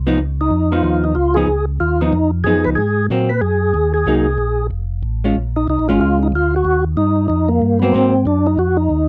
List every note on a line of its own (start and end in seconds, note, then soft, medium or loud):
0.00 0.18 C2 medium
0.07 0.18 F3 medium
0.07 0.18 B3 medium
0.07 0.18 D#4 medium
0.18 0.50 C#2 medium
0.41 0.73 D#4 medium
0.51 0.82 F2 medium
0.72 1.14 F3 medium
0.72 1.14 B3 medium
0.72 1.14 D#4 medium
0.72 0.83 F4 medium
0.83 1.15 D#2 medium
0.83 1.05 F4 medium
1.04 1.16 D#4 medium
1.15 1.46 C#2 medium
1.15 1.36 F4 medium
1.34 1.47 F3 medium
1.34 1.47 B3 medium
1.34 1.48 D#4 medium
1.34 1.65 G#4 loud
1.47 1.79 C#2 medium
1.80 2.12 D#2 medium
1.80 2.01 F4 medium
2.01 2.12 F3 medium
2.01 2.12 B3 medium
2.01 2.31 D#4 medium
2.01 2.12 D#4 medium
2.13 2.44 F2 medium
2.44 2.55 F#2 medium
2.44 2.78 F3 medium
2.44 2.78 B3 medium
2.44 2.79 D#4 medium
2.44 2.65 G#4 loud
2.55 2.67 F2 medium
2.65 2.77 C#2 medium
2.65 2.70 B4 medium
2.75 3.09 G#2 medium
2.75 3.07 G#4 medium
3.10 3.41 A#2 medium
3.10 3.29 F#3 medium
3.10 3.29 A#3 medium
3.10 3.29 C4 medium
3.29 3.41 B4 medium
3.41 3.73 F#2 medium
3.41 3.93 G#4 medium
3.74 4.06 D#2 medium
3.94 4.67 G#4 medium
4.06 4.38 C2 medium
4.06 4.25 F#3 medium
4.06 4.25 A#3 medium
4.06 4.26 D#4 medium
4.38 4.70 A#1 medium
4.71 5.02 F1 medium
5.03 5.34 A1 medium
5.24 5.35 G#3 medium
5.24 5.35 C#4 medium
5.24 5.35 F4 medium
5.35 5.67 A#1 medium
5.56 5.67 D#4 medium
5.68 5.78 C2 medium
5.68 5.88 D#4 medium
5.79 5.90 A#1 medium
5.89 6.00 G#1 medium
5.89 6.30 G#3 medium
5.89 6.31 C#4 medium
5.89 6.00 F4 medium
5.89 6.31 F4 medium
6.01 6.32 C#2 medium
6.01 6.19 F4 medium
6.23 6.28 D#4 medium
6.32 6.64 D2 medium
6.32 6.55 F4 medium
6.56 6.84 F#4 medium
6.65 6.96 D#2 medium
6.97 7.28 G2 medium
6.97 7.27 D#4 medium
7.28 7.61 F2 medium
7.28 7.49 D#4 medium
7.48 7.79 A#3 medium
7.62 7.93 G2 medium
7.79 7.93 F#3 medium
7.79 7.94 A#3 medium
7.79 7.93 B3 medium
7.79 7.94 C4 medium
7.92 8.25 G#2 medium
7.92 8.12 F#3 medium
7.92 8.13 A#3 medium
7.92 8.26 C4 medium
7.92 8.13 C4 medium
8.25 8.57 F#2 medium
8.25 8.47 D4 medium
8.47 8.59 D#4 medium
8.58 8.89 F2 medium
8.58 8.77 F#4 medium
8.77 9.07 D#4 medium
8.90 9.09 D#2 medium